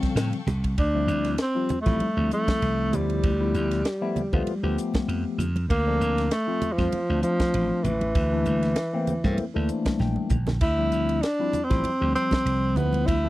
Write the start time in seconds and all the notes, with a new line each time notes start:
Already playing: C#3 F3 G3 C4 A4 F5 G5 C#6
0.02 muted slap bass stroke, kick, snare, ride
0.15 A2, snare, hi-hat pedal, ride
0.33 ride
0.47 C2, snare, hi-hat pedal, low conga
0.64 kick, ride
0.78 D2 D4, kick, ride
0.94 F3 G3 C4 E4
1.07 D2, hi-hat pedal, ride
1.25 snare, ride
1.38 C4, snare, ride
1.55 F3 G3 C4 F4
1.69 hi-hat pedal, ride, low conga
1.81 A3
1.86 A1 F3 G3 C4 E4, kick, snare, ride, high conga
2.00 muted slap bass stroke, ride, high conga
2.17 D2 F3 G3 C4 E4
2.31 A3, hi-hat pedal, ride
2.48 muted slap bass stroke, kick, snare, ride, high conga
2.62 C2, snare, ride
2.92 D2 F3 G3 A3 B3 E4, hi-hat pedal, ride, low conga
3.10 ride
3.23 D2, kick, ride
3.40 F3 A3 B3 E4
3.54 D2, hi-hat pedal, ride
3.71 snare, ride
3.85 snare, ride
4.01 F3 A3 B3 E4
4.16 hi-hat pedal, ride, low conga
4.33 D2 F3 A3 B3 F4, kick, high conga
4.47 ride, high conga
4.63 D2 F3 A3 B3 G4
4.78 hi-hat pedal, ride
4.94 muted slap bass stroke, kick, snare, ride, high conga
5.08 F2, ride
5.38 F2, hi-hat pedal, ride, low conga
5.56 ride, high conga
5.70 D2 A#3, kick, ride
5.86 F3 C4 D4 A4
6.00 D2, hi-hat pedal, ride
6.18 snare, ride
6.31 A3, snare, ride
6.47 F3 A3 C4 F4
6.62 hi-hat pedal, ride, low conga
6.72 F3
6.78 F2 F3 A3 C4 F4, kick, snare, ride, high conga
6.92 muted slap bass stroke, ride, high conga
7.10 D2 F3 A3 C4 D4
7.23 F3, hi-hat pedal, ride
7.40 muted slap bass stroke, kick, snare, ride, high conga
7.54 A1, ride
7.84 A1 E3, hi-hat pedal, ride, low conga
8.01 ride, high conga
8.15 D2, kick, ride
8.32 E3 A3 A#3 D4
8.45 D2, hi-hat pedal, ride, high conga
8.63 snare, ride
8.76 snare, ride
8.93 E3 A3 A#3 C4
9.07 hi-hat pedal, ride, low conga
9.24 G2 E3 A3 A#3 C4, kick, snare, high conga
9.38 muted slap bass stroke, ride, high conga
9.54 D2 E3 A3 A#3 D4
9.69 C5, hi-hat pedal, ride
9.85 muted slap bass stroke, kick, snare, ride, high conga
9.99 A#1 G5, snare, high conga
10.16 high conga
10.30 A#1, kick, hi-hat pedal, low conga
10.47 snare, low conga
10.61 D2 E4, kick, crash, ride
10.78 F3 G3 C4 E4
10.92 D2, hi-hat pedal, ride
11.09 ride
11.22 D4, snare, ride
11.39 F3 G3 C4 E4
11.53 hi-hat pedal, ride, low conga
11.64 C4
11.69 A1 F3 G3 C4 E4, kick, snare, ride, high conga
11.84 muted slap bass stroke, ride, high conga
12.00 D2 F3 G3 C4 G4
12.15 C4, hi-hat pedal, ride
12.31 muted slap bass stroke, kick, snare, ride, high conga
12.46 C2, snare, ride
12.76 D2 F3 A3 B3 E4, hi-hat pedal, ride, low conga
12.93 ride, high conga
13.06 D2 E4, kick, ride
13.24 F3 A3 B3 D4